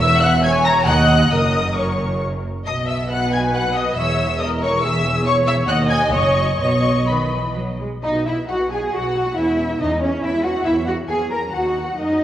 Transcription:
Already playing: E1 E2
0.00 E5 E6
0.21 F#5 F#6
0.43 C#5 G#5 G#6
0.65 A#5 A#6
0.88 D#2 D#5 F#5 F#6
1.33 F#1 F#2 A#4 D#5 D#6
1.78 C#5 C#6
2.66 B1 B2 D#5 D#6
2.87 E5 E6
3.10 B4 F#5 F#6
3.33 G#5 G#6
3.54 F#5 F#6
3.77 D#5 D#6
3.97 E1 E2 C#5 E5 E6
4.40 A#4 D#5 D#6
4.62 C#5 C#6
4.83 G#4 E5 E6
5.26 C#5 C#6
5.47 E5 E6
5.68 D#2 D#5 F#5 F#6
5.91 G#5 G#6
6.14 F#1 F#2 C#5 C#6
6.60 B1 B2 C#5 D#5 C#6
7.09 D#3 B4 B5
7.32 E3
7.55 F#3
7.80 G#3
8.03 B1 F#3 D#4 D#5
8.14 B3 F#4
8.25 F#3 D#4 E4 E5
8.37 B3 F#4
8.48 B1 F#3 D#4 F#4 F#5
8.59 B3 F#4
8.70 F#3 D#4 G#4 G#5
8.82 B3 F#4
8.92 B1 F#3 D#4 F#4 F#5
9.04 B3 F#4
9.15 F#3 D#4
9.26 B3 F#4
9.37 E2 E3 C#4 E4 E5
9.48 G#3 E4
9.58 E3 C#4
9.69 G#3 E4
9.80 E2 E3 C#4 D#4 D#5
9.91 G#3 E4
10.01 E3 C#4 C#5
10.13 G#3 E4
10.22 E2 E3 C#4 E4 E5
10.35 G#3 E4
10.43 E3 C#4 F#4 F#5
10.56 G#3 E4
10.64 E2 E3 A#3 E4 E5
10.77 F#3 C#4
10.86 E3 A#3 F#4 F#5
10.99 F#3 C#4
11.08 E2 E3 A#3 G#4 G#5
11.22 F#3 C#4
11.31 E3 A#3 A#4 A#5
11.44 F#3 C#4
11.53 D#2 D#3 B3 F#4 F#5
11.66 F#3 D#4
11.77 D#3 B3
11.89 F#3 D#4
11.97 F#2 A#3 D#4 D#5
12.11 F#3 C#4

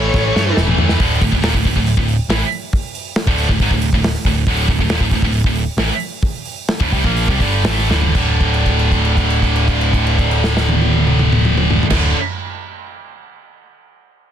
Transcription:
Already playing: A2 E3 A3 A4 C#5
0.01 E3
0.07 A2 E3
0.13 A1 A2 E3, kick, snare
0.21 A2 E3
0.29 A2 E3
0.36 G2 A2 A3, snare
0.40 E3
0.46 A2 E3
0.52 A2 E3
0.57 E1 A2 A3, snare
0.63 E3
0.67 A2 E3, mid tom
0.75 E2 A2 E3, floor tom
0.83 A2 E3
0.89 A2, snare
0.94 E3
0.99 D1 D2 A2 D3, kick, open hi-hat
1.21 D1 D2 A2, kick, open hi-hat
1.31 D1 D2 A2, kick
1.42 D#1 D#2 A#2, snare, open hi-hat
1.53 D1 D2 A2, kick
1.65 D1 D2 A2, kick, open hi-hat
1.75 D1 D2 A2, kick
1.87 open hi-hat
1.97 D1 D2 A2, kick
2.09 open hi-hat
2.29 A1 A2 E3, snare, open hi-hat
2.52 open hi-hat
2.73 kick, open hi-hat
2.95 open hi-hat
3.16 snare, open hi-hat
3.27 D1 D2 A2 D3, kick
3.38 open hi-hat
3.49 D1 D2 A2, kick
3.60 G#1 G#2 D#3, kick, open hi-hat
3.71 D1 D2 A2, kick
3.82 open hi-hat
3.93 D1 D2 A2, kick
4.04 snare, open hi-hat
4.15 snare
4.25 D1 D2 A2, kick, open hi-hat
4.47 D1 D2 A2 D3, kick, open hi-hat
4.68 D1 D2 A2, kick, open hi-hat
4.79 D1 D2 A2, kick
4.90 D#1 D#2 A#2, snare, open hi-hat
5.00 D1 D2, kick
5.05 A2
5.11 D1 D2 A2, kick, open hi-hat
5.22 D1 D2 A2, kick
5.33 open hi-hat
5.44 D1 D2 A2, kick
5.55 open hi-hat
5.77 A1 A2 E3, snare, open hi-hat
6.00 open hi-hat
6.22 kick, open hi-hat
6.45 open hi-hat
6.68 snare, open hi-hat
6.80 D1 D2 A2, kick
6.92 C2 C3 G3, kick, open hi-hat
7.04 A#1 A#2 F3 A#3, kick
7.16 open hi-hat
7.28 C2 C3 G3, kick
7.39 G1 G2 D3 G3, kick, open hi-hat
7.64 A1 A2 E3 A3, snare, open hi-hat
7.78 snare
7.88 D1 D2 A2 D3, snare
8.02 floor tom
8.14 D1 D2 A2 D3, kick, crash
8.41 kick, crash
8.54 crash
8.66 kick, crash
8.79 crash
8.92 kick, crash
9.05 crash
9.17 kick, crash
9.30 crash
9.42 kick, crash
9.56 crash
9.68 kick, crash
9.81 crash
9.93 kick, crash
10.07 crash
10.18 kick, crash
10.31 crash
10.44 snare
10.57 snare
10.69 high tom
10.82 high tom
10.94 high tom
11.07 mid tom
11.19 mid tom
11.32 mid tom
11.45 mid tom
11.57 mid tom
11.70 floor tom
11.83 floor tom
11.90 D1 D2 A2 D3, kick, snare, crash

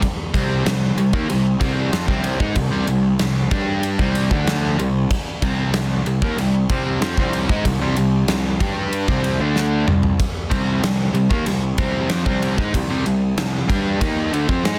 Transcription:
0.02 kick, ride
0.34 C2 C3 G3 C4, kick, ride
0.66 C2 C3 G3, snare, ride
0.97 C2 C3 G3, ride
1.13 D#2 D#3 A#3, kick
1.29 C2 C3 G3, ride
1.60 C2 C3 G3 C4, kick, ride
1.92 F2 F3 C4, snare, ride
2.07 C2 C3 G3 C4, kick
2.24 ride
2.40 G#2 G#3 D#4, kick
2.56 C2 C3 G3, kick, ride
2.71 C2 C3 G3
2.87 C2 C3 G3, ride
3.19 C2 C3 G3, snare, ride
3.51 G2 G3 D4 G4, kick, ride
3.83 ride
3.99 C2 C3 G3 C4, kick
4.15 ride
4.31 D2 D3 A3 D4, kick
4.47 snare, ride
4.78 C2 C3 G3, ride
5.11 kick, ride
5.42 C2 C3 G3 C4, kick, ride
5.74 C2 C3 G3, snare, ride
6.05 C2 C3 G3, ride
6.22 D#2 D#3 A#3, kick
6.36 C2 C3 G3, ride
6.70 C3 G3 C4, kick, ride
7.00 F2 F3 C4, snare, ride
7.17 C2 C3 G3 C4, kick
7.33 ride
7.49 G#2 G#3 D#4, kick
7.65 C2 C3 G3, kick, ride
7.80 C2 C3 G3
7.97 C2 C3 G3, ride
8.28 C2 C3 G3, snare, ride
8.60 G2 G3 D4 G4, kick, ride
8.93 ride
9.08 C2 C3 G3 C4, kick
9.24 ride
9.40 D2 D3 A3 D4
9.56 snare
9.88 C2 C3 G3, mid tom
10.03 floor tom
10.20 kick, ride
10.50 C2 C3 G3 C4, kick, ride
10.83 C2 C3 G3, snare, ride
11.14 C2 C3 G3, ride
11.30 D#2 D#3 A#3, kick
11.46 C2 C3 G3, ride
11.78 C2 C3 G3 C4, kick, ride
12.10 F2 F3 C4, snare, ride
12.26 C2 C3 G3 C4, kick
12.42 ride
12.58 G#2 G#3 D#4, kick
12.74 C2 C3 G3, kick, ride
12.90 C2 C3 G3
13.06 C2 C3 G3, ride
13.37 C2 C3 G3, snare, ride
13.68 G2 G3 D4 G4, kick, ride
14.00 D#2 D#3 A#3 D#4, kick, ride
14.32 D2 D3 A3, ride
14.49 F2 F3 C4, kick
14.64 G#2 G#3 D#4 G#4, snare, ride

